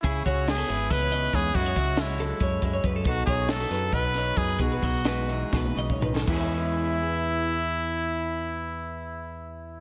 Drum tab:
CC |--------------|--------------|--------------|--------------|
HH |x-x-x-x-x-x-x-|x-x-x-x-x-x-x-|x-x-x-x-x-x-x-|x-x-x-x-------|
SD |----o-------o-|----o---------|----o-o---o---|----o---o----o|
T1 |--------------|--------------|--------------|---------o----|
FT |--------------|--------------|--------------|------------o-|
BD |o-o-----o---o-|o-o-----o-o-o-|o-o-----o---o-|o-o-----o--o--|

CC |x-------------|--------------|
HH |--------------|--------------|
SD |--------------|--------------|
T1 |--------------|--------------|
FT |--------------|--------------|
BD |o-------------|--------------|